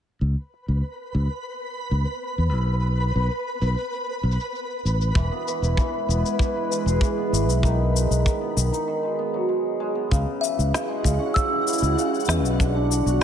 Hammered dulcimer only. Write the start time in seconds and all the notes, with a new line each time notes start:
5.16 E3
5.32 B3
5.48 E3
5.63 E4
5.78 E3
6.09 B3
6.40 E3
6.56 E4
6.71 E3
6.87 G#4
7.02 E3
7.18 B3
7.33 E3
7.49 E4
7.64 D#3
7.95 G#3
8.26 D#3
8.41 B3
8.57 D#3
8.72 D#4
8.88 D#3
9.03 G#3
9.19 B3
9.34 F#3
9.49 G#3
9.80 G#3
9.95 B3
10.11 C#3
10.42 E3
10.73 C#3
10.89 G#3
11.04 C#3
11.19 C#4
11.35 C#3
11.51 E3
11.66 C#3
11.82 G#3
11.97 C#3
12.28 E3
12.59 D3
12.74 D4
12.90 D3
13.06 F#4